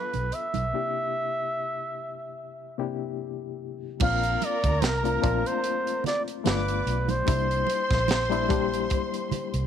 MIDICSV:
0, 0, Header, 1, 7, 480
1, 0, Start_track
1, 0, Tempo, 817439
1, 430, Time_signature, 4, 2, 24, 8
1, 5678, End_track
2, 0, Start_track
2, 0, Title_t, "String section"
2, 0, Program_c, 0, 48
2, 2360, Note_on_c, 0, 70, 87
2, 2364, Note_on_c, 0, 82, 99
2, 3532, Note_off_c, 0, 70, 0
2, 3533, Note_off_c, 0, 82, 0
2, 3792, Note_on_c, 0, 74, 81
2, 3796, Note_on_c, 0, 86, 88
2, 4026, Note_off_c, 0, 74, 0
2, 4028, Note_off_c, 0, 86, 0
2, 4271, Note_on_c, 0, 84, 99
2, 4278, Note_on_c, 0, 72, 94
2, 5678, Note_off_c, 0, 72, 0
2, 5678, Note_off_c, 0, 84, 0
2, 5678, End_track
3, 0, Start_track
3, 0, Title_t, "Flugelhorn"
3, 0, Program_c, 1, 56
3, 0, Note_on_c, 1, 71, 90
3, 199, Note_on_c, 1, 76, 107
3, 208, Note_off_c, 1, 71, 0
3, 1636, Note_off_c, 1, 76, 0
3, 2365, Note_on_c, 1, 77, 110
3, 2609, Note_on_c, 1, 74, 98
3, 2618, Note_off_c, 1, 77, 0
3, 2848, Note_on_c, 1, 70, 100
3, 2856, Note_off_c, 1, 74, 0
3, 3210, Note_on_c, 1, 72, 102
3, 3218, Note_off_c, 1, 70, 0
3, 3554, Note_off_c, 1, 72, 0
3, 3557, Note_on_c, 1, 74, 94
3, 3651, Note_off_c, 1, 74, 0
3, 3793, Note_on_c, 1, 71, 93
3, 4170, Note_on_c, 1, 72, 98
3, 4179, Note_off_c, 1, 71, 0
3, 5678, Note_off_c, 1, 72, 0
3, 5678, End_track
4, 0, Start_track
4, 0, Title_t, "Reed electric piano"
4, 0, Program_c, 2, 4
4, 0, Control_c, 2, 64, 127
4, 0, Note_on_c, 2, 59, 70
4, 0, Note_on_c, 2, 62, 62
4, 0, Note_on_c, 2, 65, 65
4, 0, Note_on_c, 2, 69, 74
4, 245, Note_off_c, 2, 59, 0
4, 247, Note_off_c, 2, 62, 0
4, 249, Note_off_c, 2, 65, 0
4, 251, Note_off_c, 2, 69, 0
4, 429, Note_on_c, 2, 48, 68
4, 432, Note_on_c, 2, 58, 64
4, 435, Note_on_c, 2, 62, 62
4, 437, Note_on_c, 2, 64, 64
4, 439, Control_c, 2, 64, 0
4, 440, Note_on_c, 2, 67, 77
4, 537, Control_c, 2, 64, 127
4, 1143, Note_off_c, 2, 48, 0
4, 1145, Note_off_c, 2, 58, 0
4, 1146, Note_off_c, 2, 62, 0
4, 1147, Note_off_c, 2, 64, 0
4, 1149, Note_off_c, 2, 67, 0
4, 1633, Note_on_c, 2, 58, 75
4, 1634, Note_on_c, 2, 48, 79
4, 1640, Note_on_c, 2, 62, 70
4, 1640, Note_on_c, 2, 64, 72
4, 1643, Note_on_c, 2, 67, 88
4, 2171, Note_off_c, 2, 48, 0
4, 2171, Note_off_c, 2, 58, 0
4, 2174, Note_off_c, 2, 62, 0
4, 2174, Note_off_c, 2, 64, 0
4, 2176, Note_off_c, 2, 67, 0
4, 2353, Note_on_c, 2, 58, 76
4, 2359, Note_on_c, 2, 60, 67
4, 2360, Control_c, 2, 64, 0
4, 2360, Note_on_c, 2, 62, 69
4, 2364, Note_on_c, 2, 65, 85
4, 2467, Control_c, 2, 64, 127
4, 2800, Note_off_c, 2, 58, 0
4, 2803, Note_off_c, 2, 60, 0
4, 2804, Note_off_c, 2, 62, 0
4, 2806, Note_off_c, 2, 65, 0
4, 2953, Note_on_c, 2, 57, 71
4, 2960, Note_on_c, 2, 60, 66
4, 2964, Note_on_c, 2, 62, 68
4, 2967, Note_on_c, 2, 65, 81
4, 3039, Note_off_c, 2, 57, 0
4, 3042, Note_off_c, 2, 60, 0
4, 3044, Note_off_c, 2, 62, 0
4, 3046, Note_off_c, 2, 65, 0
4, 3065, Note_on_c, 2, 58, 72
4, 3066, Note_on_c, 2, 60, 69
4, 3072, Note_on_c, 2, 62, 70
4, 3075, Note_on_c, 2, 65, 82
4, 3780, Note_off_c, 2, 58, 0
4, 3781, Note_off_c, 2, 60, 0
4, 3782, Note_on_c, 2, 57, 75
4, 3783, Note_off_c, 2, 62, 0
4, 3785, Note_off_c, 2, 65, 0
4, 3785, Note_on_c, 2, 59, 67
4, 3791, Note_on_c, 2, 62, 68
4, 3794, Note_on_c, 2, 65, 79
4, 3798, Control_c, 2, 64, 0
4, 3885, Control_c, 2, 64, 127
4, 4178, Note_off_c, 2, 57, 0
4, 4179, Note_off_c, 2, 59, 0
4, 4182, Note_off_c, 2, 62, 0
4, 4184, Note_off_c, 2, 65, 0
4, 4261, Note_on_c, 2, 55, 76
4, 4264, Note_on_c, 2, 58, 71
4, 4271, Note_on_c, 2, 62, 67
4, 4273, Note_on_c, 2, 64, 85
4, 4278, Control_c, 2, 64, 0
4, 4392, Control_c, 2, 64, 127
4, 4713, Note_off_c, 2, 55, 0
4, 4714, Note_off_c, 2, 58, 0
4, 4718, Note_off_c, 2, 62, 0
4, 4719, Note_off_c, 2, 64, 0
4, 4871, Note_on_c, 2, 55, 88
4, 4874, Note_on_c, 2, 58, 83
4, 4880, Note_on_c, 2, 62, 83
4, 4885, Note_on_c, 2, 64, 99
4, 4957, Note_off_c, 2, 55, 0
4, 4958, Note_off_c, 2, 58, 0
4, 4961, Note_off_c, 2, 62, 0
4, 4964, Note_off_c, 2, 64, 0
4, 4984, Note_on_c, 2, 55, 89
4, 4987, Note_on_c, 2, 58, 81
4, 4994, Note_on_c, 2, 62, 81
4, 4995, Note_on_c, 2, 67, 93
4, 5678, Note_off_c, 2, 55, 0
4, 5678, Note_off_c, 2, 58, 0
4, 5678, Note_off_c, 2, 62, 0
4, 5678, Note_off_c, 2, 67, 0
4, 5678, End_track
5, 0, Start_track
5, 0, Title_t, "Fingered electric bass"
5, 0, Program_c, 3, 33
5, 88, Note_on_c, 3, 35, 72
5, 178, Note_off_c, 3, 35, 0
5, 324, Note_on_c, 3, 35, 78
5, 416, Note_off_c, 3, 35, 0
5, 2352, Note_on_c, 3, 34, 100
5, 2554, Note_off_c, 3, 34, 0
5, 2726, Note_on_c, 3, 38, 85
5, 2817, Note_off_c, 3, 38, 0
5, 2829, Note_on_c, 3, 36, 89
5, 3033, Note_off_c, 3, 36, 0
5, 3075, Note_on_c, 3, 34, 92
5, 3183, Note_off_c, 3, 34, 0
5, 3792, Note_on_c, 3, 31, 89
5, 3994, Note_off_c, 3, 31, 0
5, 4031, Note_on_c, 3, 35, 91
5, 4233, Note_off_c, 3, 35, 0
5, 4275, Note_on_c, 3, 36, 93
5, 4476, Note_off_c, 3, 36, 0
5, 4643, Note_on_c, 3, 34, 83
5, 5207, Note_off_c, 3, 34, 0
5, 5601, Note_on_c, 3, 36, 96
5, 5678, Note_off_c, 3, 36, 0
5, 5678, End_track
6, 0, Start_track
6, 0, Title_t, "Muted fingered electric bass strokes"
6, 5468, Note_on_c, 9, 29, 49
6, 5527, Note_off_c, 9, 29, 0
6, 5678, End_track
7, 0, Start_track
7, 0, Title_t, "Drums"
7, 79, Note_on_c, 9, 42, 50
7, 81, Note_on_c, 9, 63, 49
7, 138, Note_off_c, 9, 42, 0
7, 139, Note_off_c, 9, 63, 0
7, 188, Note_on_c, 9, 42, 60
7, 247, Note_off_c, 9, 42, 0
7, 316, Note_on_c, 9, 63, 69
7, 318, Note_on_c, 9, 42, 46
7, 375, Note_off_c, 9, 63, 0
7, 377, Note_off_c, 9, 42, 0
7, 2348, Note_on_c, 9, 62, 53
7, 2351, Note_on_c, 9, 49, 95
7, 2353, Note_on_c, 9, 36, 121
7, 2407, Note_off_c, 9, 62, 0
7, 2410, Note_off_c, 9, 49, 0
7, 2412, Note_off_c, 9, 36, 0
7, 2486, Note_on_c, 9, 42, 58
7, 2545, Note_off_c, 9, 42, 0
7, 2593, Note_on_c, 9, 62, 50
7, 2595, Note_on_c, 9, 42, 84
7, 2652, Note_off_c, 9, 62, 0
7, 2653, Note_off_c, 9, 42, 0
7, 2723, Note_on_c, 9, 36, 90
7, 2724, Note_on_c, 9, 42, 52
7, 2782, Note_off_c, 9, 36, 0
7, 2783, Note_off_c, 9, 42, 0
7, 2831, Note_on_c, 9, 42, 94
7, 2831, Note_on_c, 9, 63, 66
7, 2841, Note_on_c, 9, 38, 97
7, 2889, Note_off_c, 9, 42, 0
7, 2890, Note_off_c, 9, 63, 0
7, 2900, Note_off_c, 9, 38, 0
7, 2966, Note_on_c, 9, 42, 49
7, 3025, Note_off_c, 9, 42, 0
7, 3071, Note_on_c, 9, 62, 30
7, 3074, Note_on_c, 9, 36, 101
7, 3077, Note_on_c, 9, 42, 78
7, 3129, Note_off_c, 9, 62, 0
7, 3133, Note_off_c, 9, 36, 0
7, 3136, Note_off_c, 9, 42, 0
7, 3208, Note_on_c, 9, 42, 58
7, 3267, Note_off_c, 9, 42, 0
7, 3310, Note_on_c, 9, 42, 77
7, 3369, Note_off_c, 9, 42, 0
7, 3448, Note_on_c, 9, 42, 52
7, 3506, Note_off_c, 9, 42, 0
7, 3547, Note_on_c, 9, 64, 62
7, 3560, Note_on_c, 9, 42, 80
7, 3567, Note_on_c, 9, 38, 40
7, 3606, Note_off_c, 9, 64, 0
7, 3619, Note_off_c, 9, 42, 0
7, 3625, Note_off_c, 9, 38, 0
7, 3686, Note_on_c, 9, 42, 55
7, 3745, Note_off_c, 9, 42, 0
7, 3789, Note_on_c, 9, 63, 66
7, 3792, Note_on_c, 9, 42, 91
7, 3800, Note_on_c, 9, 38, 111
7, 3848, Note_off_c, 9, 63, 0
7, 3850, Note_off_c, 9, 42, 0
7, 3859, Note_off_c, 9, 38, 0
7, 3924, Note_on_c, 9, 42, 58
7, 3983, Note_off_c, 9, 42, 0
7, 4034, Note_on_c, 9, 42, 73
7, 4093, Note_off_c, 9, 42, 0
7, 4160, Note_on_c, 9, 63, 75
7, 4162, Note_on_c, 9, 42, 54
7, 4219, Note_off_c, 9, 63, 0
7, 4221, Note_off_c, 9, 42, 0
7, 4267, Note_on_c, 9, 62, 52
7, 4273, Note_on_c, 9, 36, 127
7, 4274, Note_on_c, 9, 42, 93
7, 4326, Note_off_c, 9, 62, 0
7, 4332, Note_off_c, 9, 36, 0
7, 4333, Note_off_c, 9, 42, 0
7, 4410, Note_on_c, 9, 42, 55
7, 4469, Note_off_c, 9, 42, 0
7, 4502, Note_on_c, 9, 62, 50
7, 4519, Note_on_c, 9, 42, 79
7, 4561, Note_off_c, 9, 62, 0
7, 4578, Note_off_c, 9, 42, 0
7, 4642, Note_on_c, 9, 36, 93
7, 4646, Note_on_c, 9, 42, 48
7, 4653, Note_on_c, 9, 38, 34
7, 4701, Note_off_c, 9, 36, 0
7, 4704, Note_off_c, 9, 42, 0
7, 4712, Note_off_c, 9, 38, 0
7, 4745, Note_on_c, 9, 63, 69
7, 4751, Note_on_c, 9, 42, 88
7, 4761, Note_on_c, 9, 38, 103
7, 4804, Note_off_c, 9, 63, 0
7, 4809, Note_off_c, 9, 42, 0
7, 4820, Note_off_c, 9, 38, 0
7, 4885, Note_on_c, 9, 42, 47
7, 4944, Note_off_c, 9, 42, 0
7, 4983, Note_on_c, 9, 62, 29
7, 4992, Note_on_c, 9, 36, 103
7, 4994, Note_on_c, 9, 42, 80
7, 5042, Note_off_c, 9, 62, 0
7, 5051, Note_off_c, 9, 36, 0
7, 5053, Note_off_c, 9, 42, 0
7, 5129, Note_on_c, 9, 42, 56
7, 5188, Note_off_c, 9, 42, 0
7, 5227, Note_on_c, 9, 42, 83
7, 5232, Note_on_c, 9, 36, 90
7, 5285, Note_off_c, 9, 42, 0
7, 5291, Note_off_c, 9, 36, 0
7, 5366, Note_on_c, 9, 42, 50
7, 5424, Note_off_c, 9, 42, 0
7, 5469, Note_on_c, 9, 64, 66
7, 5474, Note_on_c, 9, 42, 79
7, 5528, Note_off_c, 9, 64, 0
7, 5532, Note_off_c, 9, 42, 0
7, 5600, Note_on_c, 9, 42, 57
7, 5659, Note_off_c, 9, 42, 0
7, 5678, End_track
0, 0, End_of_file